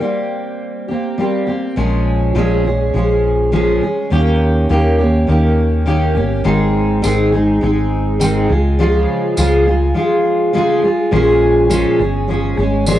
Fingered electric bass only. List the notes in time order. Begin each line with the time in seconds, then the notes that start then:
1.77 A#1
2.35 A#1
2.94 A#1
4.12 D#2
4.70 D#2
5.29 D#2
6.16 G1
6.46 G#1
7.05 G#1
7.63 G#1
8.50 C#2
9.38 C#2
11.12 A#1
11.99 G1
12.57 G#1